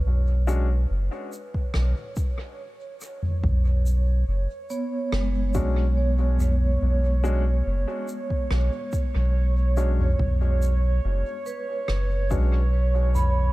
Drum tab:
SH |--x---x---x---x-|--x---x---x---x-|--x---x---x---x-|--x---x---x---x-|
SD |--------r-------|--------r-------|--------r-------|--------r-------|
T2 |---------------o|--------------o-|---------------o|--------------o-|
BD |-------o--o-----|o---------o-----|-------o--o-----|o---------o-----|